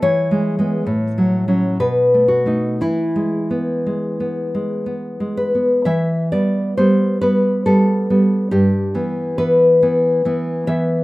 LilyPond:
\new Staff \with { instrumentName = "Nylon-string guitar" } { \time 3/4 \key e \major \tempo 4 = 68 << { cis''2 b'8 fis'8 | e'2~ e'8 b'8 | \key e \minor e''8 d''8 c''8 b'8 a'4 | g'4 b'4 r8 e''8 | } \\ { \tuplet 3/2 { e8 gis8 <gis b>8 a,8 fis8 <fis cis'>8 b,8 a8 <a dis'>8 } | \tuplet 3/2 { e8 gis8 b8 gis8 b8 gis8 b8 gis8 b8 } | e8 <g b>8 <g b>8 <g b>8 <g b>8 <g b>8 | g,8 <e b>8 <e b>8 <e b>8 <e b>8 <e b>8 | } >> }